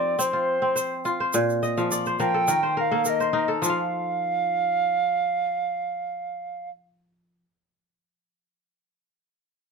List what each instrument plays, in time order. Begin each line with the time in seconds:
Already playing: kora F3 C4 D#4 F4 G4 A4, flute D5
0.19 kora C4, flute C5, shaker
0.33 kora F4
0.62 kora C4
0.76 kora C5, shaker
1.05 kora F4, shaker
1.20 kora C5
1.33 kora A#2, shaker
1.50 shaker
1.63 kora D#5, shaker
1.77 kora F3 F5, shaker
1.91 kora D5, shaker
2.05 kora C5, shaker
2.19 kora F3 A#4, flute G5, shaker
2.34 kora A4
2.48 kora D#3 A#4, shaker
2.63 kora C5
2.77 kora A#4, flute F5
2.91 kora A#3 A4
3.05 kora A#4, shaker
3.09 flute D#5
3.20 kora C5, shaker
3.33 kora D#4 A#4
3.48 kora A4
3.62 kora F3 F4, flute F5, shaker
3.70 kora F5